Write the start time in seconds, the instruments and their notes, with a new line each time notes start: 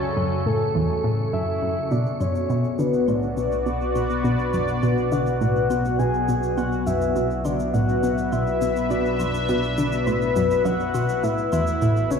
Already playing: synth arpeggio sound C#2, synth drone F#2, analog synth pad C#3 F#3 A4 G#5, soft synth lead C#5, synth texture C#6
0.17 synth arpeggio sound F#2
0.46 synth arpeggio sound A2, soft synth lead A4
0.75 synth arpeggio sound E2
1.04 synth arpeggio sound A2
1.33 synth arpeggio sound F#2, soft synth lead E5
1.62 synth arpeggio sound F#2
1.91 synth drone B1, synth arpeggio sound B2, analog synth pad B3, soft synth lead D5, shaker
2.01 analog synth pad F#4
2.06 shaker
2.20 synth arpeggio sound F#2, analog synth pad B4, soft synth lead C#5, low woodblock, shaker
2.35 shaker
2.50 synth arpeggio sound B2, shaker
2.57 analog synth pad D5
2.64 shaker
2.79 synth arpeggio sound D3, soft synth lead B4, shaker
2.93 shaker
3.08 synth arpeggio sound A2, soft synth lead D5, low woodblock, shaker
3.23 shaker
3.37 synth arpeggio sound B2, shaker
3.52 shaker
3.66 synth arpeggio sound B2, shaker
3.81 shaker
3.95 synth arpeggio sound B2, low woodblock, shaker
4.10 shaker
4.24 synth arpeggio sound B2, soft synth lead D5, shaker
4.39 shaker
4.53 synth arpeggio sound F#2, shaker
4.68 shaker
4.83 synth arpeggio sound B2, low woodblock, shaker
4.97 shaker
5.12 synth arpeggio sound D3, soft synth lead F#5, shaker
5.27 shaker
5.41 synth arpeggio sound A2, shaker
5.56 shaker
5.70 synth arpeggio sound B2, low woodblock, shaker
5.85 shaker
5.99 synth arpeggio sound B2, soft synth lead G#5, shaker
6.14 shaker
6.28 synth arpeggio sound B2, shaker
6.43 shaker
6.57 synth arpeggio sound B2, soft synth lead F#5, low woodblock, shaker
6.72 shaker
6.86 synth arpeggio sound F#2, soft synth lead E5, shaker
7.01 shaker
7.16 synth arpeggio sound B2, shaker
7.23 analog synth pad E5
7.31 analog synth pad B4, shaker
7.45 synth arpeggio sound D3, soft synth lead D5, low woodblock, shaker
7.60 shaker
7.73 synth arpeggio sound A2, soft synth lead F#5, shaker
7.89 shaker
8.03 synth arpeggio sound B2, shaker
8.18 shaker
8.32 synth arpeggio sound B2, soft synth lead E5, low woodblock, shaker
8.47 shaker
8.62 synth arpeggio sound B2, shaker
8.76 shaker
8.90 synth arpeggio sound B2, soft synth lead D5, shaker
9.05 shaker
9.20 synth arpeggio sound F#2, low woodblock, shaker
9.34 shaker
9.49 synth arpeggio sound B2, shaker
9.63 shaker
9.78 synth arpeggio sound D3, shaker
9.92 shaker
10.06 synth arpeggio sound A2, soft synth lead B4, low woodblock, shaker
10.22 shaker
10.36 synth arpeggio sound F#2, shaker
10.51 shaker
10.65 synth arpeggio sound F#2, soft synth lead F#5, shaker
10.80 shaker
10.95 synth arpeggio sound B2, low woodblock, shaker
11.09 shaker
11.23 synth drone A1, synth arpeggio sound A2, analog synth pad A3 E4, soft synth lead E5, shaker
11.38 shaker
11.52 synth arpeggio sound E2, soft synth lead E5, low woodblock, shaker
11.67 shaker
11.82 synth arpeggio sound A2, shaker
11.97 shaker
12.01 analog synth pad C#5
12.11 synth arpeggio sound C#3, soft synth lead C#5, shaker